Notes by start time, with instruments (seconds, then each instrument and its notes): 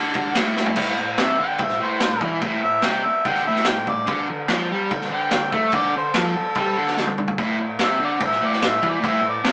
Already playing: overdriven electric guitar D3, harmonica A5
0.14 kick, ride
0.35 overdriven electric guitar A2, snare, ride
0.56 snare
0.66 floor tom
0.76 overdriven electric guitar A2, kick, crash
0.98 overdriven electric guitar A2
1.18 overdriven electric guitar C3, snare, crash
1.23 harmonica E5
1.39 overdriven electric guitar D3, harmonica G5
1.58 overdriven electric guitar A2, kick, crash
1.63 harmonica E5
1.69 snare
1.80 overdriven electric guitar A2, harmonica C5
2.00 overdriven electric guitar A2, harmonica C5, snare, crash
2.21 overdriven electric guitar E3, kick
2.41 overdriven electric guitar A2, kick, crash
2.64 overdriven electric guitar A2, harmonica E5
2.82 overdriven electric guitar C3, harmonica G5, snare, crash
3.06 harmonica E5, muted overdriven electric guitar stroke
3.25 overdriven electric guitar D3, harmonica G5, kick, crash
3.35 snare
3.47 overdriven electric guitar A2, harmonica E5
3.56 snare
3.65 overdriven electric guitar A2, harmonica G5, snare, crash
3.87 overdriven electric guitar A2, harmonica D5, kick
4.06 overdriven electric guitar D3, kick, crash
4.30 overdriven electric guitar D3
4.48 overdriven electric guitar F3, snare, crash
4.72 overdriven electric guitar G3
4.91 overdriven electric guitar D3, kick, crash
5.01 snare
5.12 overdriven electric guitar D3, harmonica G5
5.31 overdriven electric guitar D3, snare, crash
5.53 overdriven electric guitar A3, harmonica E5, kick
5.72 overdriven electric guitar D3, harmonica D5, kick, crash
5.96 overdriven electric guitar D3, harmonica C5
6.14 overdriven electric guitar F3, harmonica A4, snare, crash
6.36 muted overdriven electric guitar stroke
6.55 overdriven electric guitar G3, kick, crash
6.77 overdriven electric guitar D3
6.87 snare
6.97 overdriven electric guitar D3, snare
7.07 high tom
7.18 overdriven electric guitar D3, mid tom
7.28 floor tom
7.38 overdriven electric guitar A2, kick, crash
7.61 overdriven electric guitar A2
7.79 overdriven electric guitar C3, snare, crash
7.83 harmonica E5
8.00 overdriven electric guitar D3
8.05 harmonica D5
8.20 overdriven electric guitar A2, kick, crash
8.25 harmonica E5
8.32 snare
8.42 overdriven electric guitar A2
8.46 harmonica D5
8.53 snare
8.61 overdriven electric guitar A2, snare, crash
8.68 harmonica E5
8.82 overdriven electric guitar E3, kick
8.89 harmonica D5
9.00 overdriven electric guitar A2, kick, crash
9.08 harmonica E5
9.22 overdriven electric guitar A2
9.29 harmonica D5
9.44 overdriven electric guitar C3, snare, crash